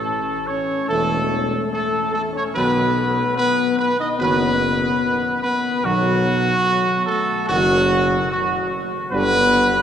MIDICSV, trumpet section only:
0, 0, Header, 1, 2, 480
1, 0, Start_track
1, 0, Tempo, 825309
1, 1485, Time_signature, 4, 2, 24, 8
1, 3878, Tempo, 813008
1, 5740, End_track
2, 0, Start_track
2, 0, Title_t, "Trumpet section"
2, 0, Program_c, 0, 61
2, 0, Note_on_c, 0, 69, 101
2, 258, Note_off_c, 0, 69, 0
2, 275, Note_on_c, 0, 73, 91
2, 513, Note_on_c, 0, 69, 102
2, 517, Note_off_c, 0, 73, 0
2, 976, Note_off_c, 0, 69, 0
2, 1004, Note_on_c, 0, 69, 96
2, 1228, Note_off_c, 0, 69, 0
2, 1246, Note_on_c, 0, 69, 96
2, 1300, Note_off_c, 0, 69, 0
2, 1367, Note_on_c, 0, 73, 91
2, 1421, Note_off_c, 0, 73, 0
2, 1483, Note_on_c, 0, 71, 105
2, 1939, Note_off_c, 0, 71, 0
2, 1965, Note_on_c, 0, 71, 107
2, 2186, Note_off_c, 0, 71, 0
2, 2202, Note_on_c, 0, 71, 96
2, 2313, Note_off_c, 0, 71, 0
2, 2329, Note_on_c, 0, 75, 94
2, 2381, Note_off_c, 0, 75, 0
2, 2444, Note_on_c, 0, 71, 110
2, 3136, Note_off_c, 0, 71, 0
2, 3158, Note_on_c, 0, 71, 103
2, 3381, Note_off_c, 0, 71, 0
2, 3397, Note_on_c, 0, 66, 112
2, 4113, Note_on_c, 0, 69, 105
2, 4118, Note_off_c, 0, 66, 0
2, 4341, Note_off_c, 0, 69, 0
2, 4364, Note_on_c, 0, 66, 118
2, 4823, Note_off_c, 0, 66, 0
2, 4846, Note_on_c, 0, 66, 92
2, 5067, Note_off_c, 0, 66, 0
2, 5326, Note_on_c, 0, 71, 127
2, 5740, Note_off_c, 0, 71, 0
2, 5740, End_track
0, 0, End_of_file